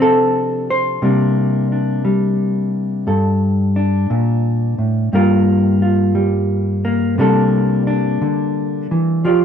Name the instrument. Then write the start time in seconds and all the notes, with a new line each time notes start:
hollow-body jazz guitar
Already playing: C3 F3 D4
0.00 C4 A4
0.70 C5
1.02 C3 G3 A#3 D4
1.72 D4
2.05 G3
3.07 G2 A4
3.76 D4
4.10 A#2
4.78 A2
5.13 G2 G3 A#3 F4 A#4
5.82 F4
6.15 G3
6.85 A#3
7.18 C3 G3 A#3 D4 A4
7.87 D4
8.21 D3
8.91 E3
9.25 F3 F4 G4 D5